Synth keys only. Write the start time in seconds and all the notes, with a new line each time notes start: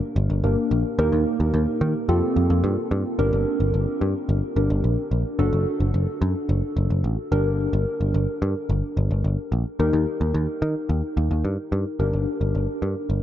Already playing: A#3 D4 G4 A#4
0.44 A#3 D4 G4 A#4
0.99 A#3 D#4 G4 A#4
2.09 C4 F4 G4 A4
3.19 D4 G4 A#4
4.56 D4 G4 A#4
5.39 D4 F#4 A4
7.32 D4 G4 A#4
9.80 D#4 G4 A#4
11.99 D4 G4 A#4